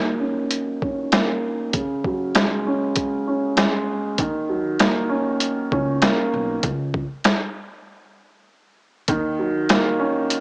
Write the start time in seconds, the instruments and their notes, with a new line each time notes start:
Already playing: upright piano D#3 F#3 A#3
0.19 upright piano C#4
0.51 closed hi-hat
0.82 upright piano C#4, kick
1.12 upright piano A#3, cross-stick, snare, closed hi-hat
1.73 upright piano C#3, kick, closed hi-hat
2.04 upright piano F#3, kick
2.35 upright piano G#3, cross-stick, snare, closed hi-hat
2.67 upright piano C#4
2.96 kick, closed hi-hat
3.27 upright piano C#4
3.56 upright piano G#3, cross-stick, snare, closed hi-hat
4.18 upright bass D#2, upright piano D#3, kick, closed hi-hat
4.49 upright piano F#3
4.79 upright piano A#3, cross-stick, snare, closed hi-hat
5.09 upright piano C#4
5.40 closed hi-hat
5.72 upright bass C#2, upright piano C#4, kick
6.02 upright piano A#3, cross-stick, snare, closed hi-hat
6.33 upright bass B1
6.63 upright bass C#2, kick, closed hi-hat
6.94 kick
7.24 cross-stick, snare, closed hi-hat
9.08 upright bass D#2, upright piano D#3, kick, closed hi-hat
9.39 upright piano F#3
9.69 upright piano A#3, cross-stick, snare, closed hi-hat
9.99 upright piano C#4
10.30 closed hi-hat